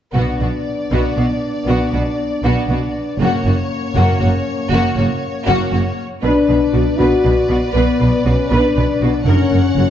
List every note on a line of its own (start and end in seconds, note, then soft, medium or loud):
0.14 0.23 B1 soft
0.14 0.24 B2 soft
0.14 3.15 B3 soft
0.14 0.39 B3 soft
0.14 3.16 D4 soft
0.14 0.39 F#4 soft
0.14 3.16 D5 soft
0.40 0.48 B1 soft
0.40 0.49 B2 soft
0.40 0.50 B3 soft
0.40 0.49 F#4 soft
0.91 1.00 B1 soft
0.91 1.00 B2 soft
0.91 1.16 B3 soft
0.91 1.15 F#4 soft
1.17 1.25 B1 soft
1.17 1.25 B2 soft
1.17 1.26 B3 soft
1.17 1.25 F#4 soft
1.67 1.75 B1 soft
1.67 1.76 B2 soft
1.67 1.91 B3 soft
1.67 1.92 F#4 soft
1.93 2.01 B1 soft
1.93 2.01 B2 soft
1.93 2.01 B3 soft
1.93 2.02 F#4 soft
2.44 2.52 B1 soft
2.44 2.53 B2 soft
2.44 2.68 B3 medium
2.44 2.68 F#4 soft
2.68 2.76 B1 soft
2.68 2.79 B2 soft
2.68 2.78 B3 soft
2.68 2.79 F#4 soft
3.19 3.27 F#1 medium
3.19 3.29 F#2 medium
3.19 5.94 A#3 soft
3.19 3.44 A#3 soft
3.19 5.98 C#4 soft
3.19 3.44 F#4 soft
3.19 6.01 C#5 medium
3.44 3.52 F#1 soft
3.44 3.54 F#2 soft
3.44 3.53 A#3 soft
3.44 3.55 F#4 soft
3.96 4.04 F#1 medium
3.96 4.05 F#2 medium
3.96 4.19 A#3 medium
3.96 4.19 F#4 soft
4.20 4.30 F#1 soft
4.20 4.31 F#2 soft
4.20 4.30 A#3 soft
4.20 4.28 F#4 soft
4.72 4.80 F#1 medium
4.72 4.81 F#2 medium
4.72 4.96 A#3 medium
4.72 4.96 F#4 medium
4.97 5.05 F#1 soft
4.97 5.06 F#2 soft
4.97 5.06 A#3 soft
4.97 5.07 F#4 soft
5.47 5.56 F#1 medium
5.47 5.56 F#2 medium
5.47 5.71 A#3 medium
5.47 5.71 F#4 medium
5.72 5.80 F#1 soft
5.72 5.81 F#2 soft
5.72 5.81 A#3 soft
5.72 5.81 F#4 soft
6.23 6.31 B1 soft
6.23 6.32 B2 soft
6.23 6.96 D4 medium
6.23 6.47 B4 soft
6.23 9.23 B4 soft
6.23 9.23 D5 soft
6.49 6.57 B1 soft
6.49 6.58 B2 soft
6.49 6.57 B4 soft
6.73 6.82 B1 soft
6.73 6.82 B2 soft
6.73 6.81 F#4 soft
6.98 7.07 B1 soft
6.98 7.08 B2 soft
6.98 7.75 F#4 medium
6.98 7.23 B4 soft
7.24 7.32 B1 soft
7.24 7.33 B2 soft
7.24 7.32 B4 soft
7.49 7.57 B1 soft
7.49 7.58 B2 soft
7.49 7.57 F#4 soft
7.72 7.83 B1 soft
7.72 7.84 B2 soft
7.72 8.23 B3 medium
7.72 7.99 B4 soft
8.01 8.09 B1 soft
8.01 8.09 B2 soft
8.01 8.09 B4 soft
8.25 8.34 B1 soft
8.25 8.34 B2 soft
8.25 8.51 C#4 medium
8.25 8.34 F#4 soft
8.51 8.59 B1 medium
8.51 8.59 B2 soft
8.51 9.27 D4 medium
8.51 8.75 B4 medium
8.76 8.84 B1 soft
8.76 8.85 B2 soft
8.76 8.84 B4 soft
9.01 9.09 B1 soft
9.01 9.11 B2 soft
9.01 9.09 F#4 soft
9.26 9.34 F#1 medium
9.26 9.36 F#2 medium
9.26 9.90 C#4 medium
9.26 9.51 A#4 medium
9.26 9.90 C#5 soft
9.26 9.90 F#5 soft
9.52 9.60 F#1 soft
9.52 9.62 F#2 soft
9.52 9.60 A#4 soft
9.77 9.85 F#1 soft
9.77 9.87 F#2 soft
9.77 9.86 F#4 soft